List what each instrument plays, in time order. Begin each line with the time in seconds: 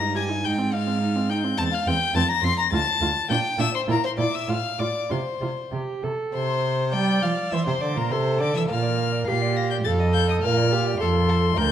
Already playing: cello G2, violin A#5 A#6
0.01 viola D#4
0.15 viola G4, violin G#5 G#6
0.29 viola D#4
0.43 cello G#2, viola D#4, violin G5 G6
0.58 viola C4
0.72 viola D#4, violin F5 F6
0.87 viola C4
1.01 viola D#4
1.16 viola C4
1.29 viola D#4, violin G5 G6
1.44 viola C4
1.57 cello E2, viola C4, violin A5 A6
1.72 violin F5 F6
1.87 cello E2, viola C4, violin G5 G6
2.14 cello F2, viola C4, violin A5 A6
2.29 violin A#5 A#6
2.43 cello F2, viola C4, violin C6 C7
2.58 violin A#5 A#6
2.72 cello D2, viola F4, violin A5 A6
3.01 cello D2, viola F4
3.30 cello A#2, viola D4, violin G5 G6
3.58 cello A#2, viola D4, violin E5 E6
3.75 violin C5 C6
3.88 cello A#2, viola E4, violin A#4 A#5
4.04 violin C5 C6
4.17 cello A#2, viola E4, violin D5 D6
4.33 violin E5 E6
4.48 cello A2, viola F4, violin F5 F6
4.79 cello A2, viola F4, violin D5 D6
5.09 cello C3, viola F4, violin C5 C6
5.41 cello C3, viola F4
5.72 cello C3, viola G4
6.03 cello C3, viola A4
6.33 cello C3, violin C5 C6
6.93 cello G3, viola D5, violin G5 G6
7.22 cello F3, violin F5 F6
7.51 cello E3, viola C5, violin E5 E6
7.66 cello C3, violin C5 C6
7.81 cello D3, violin D5 D6
7.95 cello A#2, violin A#4 A#5
8.11 cello C3, viola A4, violin C5 C6
8.40 cello D3, violin D5 D6
8.54 cello E3, violin E5 E6
8.68 cello A#2, viola A#4, violin F5 F6
8.83 violin D5
8.97 violin F5
9.12 violin D5
9.26 cello A#2, viola G4, violin F5 C7
9.42 violin D5
9.56 violin F5 A#6
9.71 violin D5 G6
9.85 cello F2, viola A4, violin F5 A6
10.00 violin D#5
10.14 violin F5 G6
10.28 violin D#5 D#6
10.43 cello A#2, viola A#4, violin F5 F6
10.57 violin D5
10.72 viola G4, violin F5
10.86 violin D5
10.99 cello F2, violin A4 C6, viola A4
11.29 violin A4
11.56 cello D2, violin A#4 G6, viola A#4